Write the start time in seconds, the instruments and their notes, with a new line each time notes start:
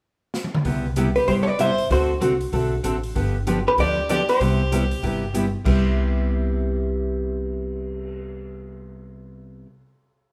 0.34 snare
0.44 high tom
0.55 mid tom
0.65 upright bass C2, steel-string acoustic guitar C3 G3 B3 E4 G4, kick, open hi-hat
0.96 steel-string acoustic guitar C3 G3 B3 E4 G4, closed hi-hat
1.16 fiddle G4, hollow-body jazz guitar B4, open hi-hat
1.27 upright bass G1, steel-string acoustic guitar C3 G3 B3 E4 G4, fiddle G4, hollow-body jazz guitar C5, kick, open hi-hat
1.42 fiddle A4, hollow-body jazz guitar C#5
1.47 fiddle B4, hollow-body jazz guitar D5
1.58 steel-string acoustic guitar C3 G3 B3 E4 G4, fiddle C5, hollow-body jazz guitar E5, closed hi-hat
1.78 open hi-hat
1.90 upright bass D2, steel-string acoustic guitar D3 A3 C4 F#4 A4, fiddle F#4, hollow-body jazz guitar C5, kick, open hi-hat
2.21 upright bass C2, steel-string acoustic guitar D3 A3 C4 F#4 A4, closed hi-hat
2.41 open hi-hat
2.52 upright bass B1, steel-string acoustic guitar D3 A3 C4 F#4 A4, kick, open hi-hat
2.83 upright bass A1, steel-string acoustic guitar D3 A3 C4 F#4 A4, closed hi-hat
3.03 open hi-hat
3.15 upright bass G1, steel-string acoustic guitar D3 F3 B3 D4 G4, kick, open hi-hat
3.47 steel-string acoustic guitar D3 F3 B3 D4 G4, closed hi-hat
3.67 fiddle G4, hollow-body jazz guitar B4
3.78 upright bass D2, steel-string acoustic guitar D3 F3 B3 D4 G4, fiddle G4, hollow-body jazz guitar D5, kick, open hi-hat
4.09 steel-string acoustic guitar D3 F3 B3 D4 G4, fiddle G4, hollow-body jazz guitar D5, closed hi-hat
4.29 fiddle G4, hollow-body jazz guitar C5, open hi-hat
4.40 upright bass C2, steel-string acoustic guitar C3 G3 B3 E4 G4, kick, open hi-hat
4.72 steel-string acoustic guitar C3 G3 B3 E4 G4, closed hi-hat
4.91 open hi-hat
5.02 upright bass G1, steel-string acoustic guitar C3 G3 B3 E4 G4, kick, open hi-hat
5.34 steel-string acoustic guitar C3 G3 B3 E4 G4, closed hi-hat
5.64 upright bass C2, steel-string acoustic guitar C3 G3 B3 E4 G4, kick, crash
5.85 cymbal swell